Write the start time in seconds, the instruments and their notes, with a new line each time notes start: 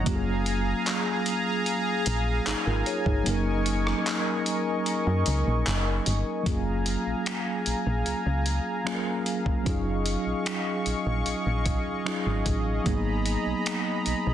0.03 fm bass F#1, tine electric piano F#3 A#3 C#4, analog synth pad G#4 F5 G#5 A#5, kick, closed hi-hat
0.08 tine electric piano F4 G4
0.16 tine electric piano G#4
0.46 closed hi-hat
0.86 clap, closed hi-hat
1.26 closed hi-hat
1.66 closed hi-hat
2.06 fm bass A#1, closed hi-hat
2.46 fm bass G#1, tine electric piano D#4 G#4, clap, closed hi-hat
2.66 fm bass G#1, tine electric piano F4 A#4
2.86 tine electric piano G#4 C#5, closed hi-hat
3.06 fm bass G1, tine electric piano D#4 G#4, kick
3.23 fm bass F#1, tine electric piano F#3 A#3 C#4, analog synth pad A#4 D#5 C#6, closed hi-hat
3.28 tine electric piano D#4 A#4
3.66 closed hi-hat
3.87 cross-stick
4.06 clap, closed hi-hat
4.46 closed hi-hat
4.86 closed hi-hat
5.07 fm bass F#2
5.26 fm bass C#2, closed hi-hat
5.47 fm bass A#1
5.67 fm bass F#1, clap, closed hi-hat
6.06 fm bass G1, closed hi-hat
6.43 fm bass F#1, tine electric piano F#3 A#3 C#4, analog synth pad G#4 F5 G#5 A#5, kick, closed hi-hat
6.48 tine electric piano F4 G#4
6.86 closed hi-hat
7.07 fm bass A#1
7.26 finger snap, closed hi-hat
7.66 fm bass A#1, closed hi-hat
7.87 fm bass A#1
8.06 fm bass C#2, closed hi-hat
8.26 fm bass C#2
8.46 closed hi-hat
8.84 tine electric piano F#3 A#3 C#4 F4 G#4, finger snap
8.94 tine electric piano A#4
9.26 closed hi-hat
9.46 kick
9.63 fm bass F#1, tine electric piano F#3 C#4 D#4, analog synth pad D#5 C#6, kick, closed hi-hat
9.67 tine electric piano F4 G#4
10.06 closed hi-hat
10.27 fm bass A#1
10.46 finger snap, closed hi-hat
10.86 fm bass A#1, closed hi-hat
11.07 fm bass A#1
11.26 fm bass A#1, closed hi-hat
11.46 fm bass A#1
11.66 kick, closed hi-hat
12.05 tine electric piano F#3 C#4 D#4 F4 G#4, finger snap
12.27 fm bass G#1
12.46 fm bass A1, kick, closed hi-hat
12.83 fm bass G#1, tine electric piano F#3 A#3 B3, analog synth pad A#5 B5, kick, closed hi-hat
12.88 tine electric piano D#4 G#4
13.26 closed hi-hat
13.47 fm bass B1
13.66 finger snap, closed hi-hat
14.06 fm bass B1, closed hi-hat
14.27 fm bass B1